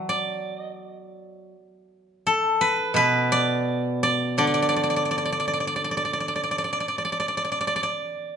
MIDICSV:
0, 0, Header, 1, 2, 480
1, 0, Start_track
1, 0, Tempo, 730816
1, 45, Time_signature, 4, 2, 24, 8
1, 1485, Tempo, 716846
1, 3885, Tempo, 748130
1, 4845, Tempo, 816327
1, 5447, End_track
2, 0, Start_track
2, 0, Title_t, "Guzheng"
2, 0, Program_c, 0, 107
2, 0, Note_on_c, 0, 54, 45
2, 0, Note_on_c, 0, 76, 66
2, 0, Note_on_c, 0, 78, 68
2, 0, Note_on_c, 0, 81, 53
2, 59, Note_on_c, 0, 74, 60
2, 335, Note_off_c, 0, 76, 0
2, 388, Note_off_c, 0, 74, 0
2, 388, Note_on_c, 0, 75, 60
2, 463, Note_off_c, 0, 81, 0
2, 480, Note_off_c, 0, 75, 0
2, 480, Note_on_c, 0, 74, 60
2, 578, Note_off_c, 0, 74, 0
2, 578, Note_on_c, 0, 75, 60
2, 635, Note_off_c, 0, 78, 0
2, 664, Note_off_c, 0, 75, 0
2, 664, Note_on_c, 0, 74, 60
2, 1004, Note_off_c, 0, 54, 0
2, 1272, Note_off_c, 0, 74, 0
2, 1488, Note_on_c, 0, 69, 61
2, 1719, Note_on_c, 0, 71, 69
2, 1940, Note_on_c, 0, 47, 49
2, 1953, Note_off_c, 0, 71, 0
2, 1955, Note_on_c, 0, 71, 74
2, 2194, Note_on_c, 0, 74, 75
2, 2667, Note_off_c, 0, 74, 0
2, 2670, Note_on_c, 0, 74, 70
2, 2902, Note_on_c, 0, 50, 46
2, 2903, Note_off_c, 0, 74, 0
2, 2904, Note_off_c, 0, 47, 0
2, 2906, Note_on_c, 0, 74, 65
2, 2958, Note_off_c, 0, 69, 0
2, 2963, Note_off_c, 0, 74, 0
2, 2966, Note_on_c, 0, 74, 46
2, 3007, Note_off_c, 0, 74, 0
2, 3010, Note_on_c, 0, 74, 55
2, 3064, Note_off_c, 0, 74, 0
2, 3067, Note_on_c, 0, 74, 49
2, 3107, Note_off_c, 0, 74, 0
2, 3110, Note_on_c, 0, 74, 54
2, 3158, Note_off_c, 0, 74, 0
2, 3161, Note_on_c, 0, 74, 45
2, 3206, Note_off_c, 0, 74, 0
2, 3208, Note_on_c, 0, 74, 48
2, 3249, Note_off_c, 0, 74, 0
2, 3251, Note_on_c, 0, 74, 45
2, 3292, Note_off_c, 0, 74, 0
2, 3294, Note_on_c, 0, 74, 47
2, 3324, Note_off_c, 0, 71, 0
2, 3351, Note_off_c, 0, 74, 0
2, 3354, Note_on_c, 0, 74, 40
2, 3389, Note_off_c, 0, 74, 0
2, 3392, Note_on_c, 0, 74, 48
2, 3435, Note_off_c, 0, 74, 0
2, 3438, Note_on_c, 0, 74, 41
2, 3486, Note_off_c, 0, 74, 0
2, 3489, Note_on_c, 0, 74, 43
2, 3533, Note_off_c, 0, 74, 0
2, 3536, Note_on_c, 0, 74, 42
2, 3582, Note_off_c, 0, 74, 0
2, 3585, Note_on_c, 0, 74, 48
2, 3635, Note_off_c, 0, 74, 0
2, 3638, Note_on_c, 0, 74, 44
2, 3674, Note_off_c, 0, 74, 0
2, 3677, Note_on_c, 0, 74, 49
2, 3720, Note_off_c, 0, 74, 0
2, 3722, Note_on_c, 0, 74, 42
2, 3767, Note_off_c, 0, 74, 0
2, 3770, Note_on_c, 0, 74, 46
2, 3824, Note_off_c, 0, 74, 0
2, 3827, Note_on_c, 0, 74, 40
2, 3881, Note_off_c, 0, 74, 0
2, 3883, Note_on_c, 0, 74, 44
2, 3925, Note_off_c, 0, 74, 0
2, 3928, Note_on_c, 0, 74, 40
2, 3963, Note_off_c, 0, 74, 0
2, 3966, Note_on_c, 0, 74, 43
2, 4013, Note_off_c, 0, 74, 0
2, 4016, Note_on_c, 0, 74, 38
2, 4067, Note_off_c, 0, 74, 0
2, 4069, Note_on_c, 0, 74, 42
2, 4112, Note_off_c, 0, 74, 0
2, 4115, Note_on_c, 0, 74, 37
2, 4162, Note_off_c, 0, 74, 0
2, 4165, Note_on_c, 0, 74, 44
2, 4210, Note_off_c, 0, 74, 0
2, 4213, Note_on_c, 0, 74, 39
2, 4261, Note_off_c, 0, 74, 0
2, 4263, Note_on_c, 0, 74, 44
2, 4309, Note_off_c, 0, 74, 0
2, 4312, Note_on_c, 0, 74, 41
2, 4353, Note_off_c, 0, 50, 0
2, 4355, Note_off_c, 0, 74, 0
2, 4358, Note_on_c, 0, 74, 46
2, 4393, Note_off_c, 0, 74, 0
2, 4396, Note_on_c, 0, 74, 39
2, 4448, Note_off_c, 0, 74, 0
2, 4451, Note_on_c, 0, 74, 45
2, 4497, Note_off_c, 0, 74, 0
2, 4499, Note_on_c, 0, 74, 42
2, 4548, Note_off_c, 0, 74, 0
2, 4550, Note_on_c, 0, 74, 44
2, 4611, Note_off_c, 0, 74, 0
2, 4614, Note_on_c, 0, 74, 37
2, 4654, Note_off_c, 0, 74, 0
2, 4656, Note_on_c, 0, 74, 44
2, 4702, Note_off_c, 0, 74, 0
2, 4704, Note_on_c, 0, 74, 39
2, 4750, Note_off_c, 0, 74, 0
2, 4752, Note_on_c, 0, 74, 46
2, 4804, Note_off_c, 0, 74, 0
2, 4807, Note_on_c, 0, 74, 42
2, 4861, Note_off_c, 0, 74, 0
2, 4863, Note_on_c, 0, 74, 45
2, 4904, Note_off_c, 0, 74, 0
2, 4906, Note_on_c, 0, 74, 40
2, 4946, Note_off_c, 0, 74, 0
2, 4948, Note_on_c, 0, 74, 47
2, 4998, Note_off_c, 0, 74, 0
2, 5001, Note_on_c, 0, 74, 44
2, 5037, Note_off_c, 0, 74, 0
2, 5040, Note_on_c, 0, 74, 47
2, 5088, Note_off_c, 0, 74, 0
2, 5090, Note_on_c, 0, 74, 42
2, 5130, Note_off_c, 0, 74, 0
2, 5132, Note_on_c, 0, 74, 50
2, 5447, Note_off_c, 0, 74, 0
2, 5447, End_track
0, 0, End_of_file